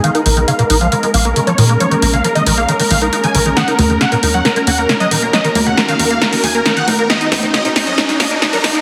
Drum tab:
HH |xxoxxxoxxxoxxxox|xxoxxxoxxooxxxox|xxoxxxoxxxoxxxox|xxoxxxoxxooxxxox|
SD |----------------|----------------|o---o---o---o---|o---o---o---o---|
CG |----------------|----------------|--o-------------|--o-----------o-|

HH |xxoxxxoxxxoxxxox|
SD |o-o-o-o-o-o-o-o-|
CG |--o-------------|